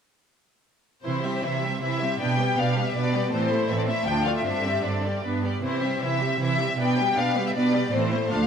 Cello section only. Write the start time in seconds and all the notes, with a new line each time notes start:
1.05 C3
1.43 C3
1.81 C3
2.20 B2
2.57 B2
2.95 B2
3.32 A2
3.68 A2
4.05 D2
4.44 G2
4.84 G2
5.23 G2
5.62 C3
6.00 C3
6.39 C3
6.78 B2
7.16 B2
7.54 B2
7.92 A2
8.31 D2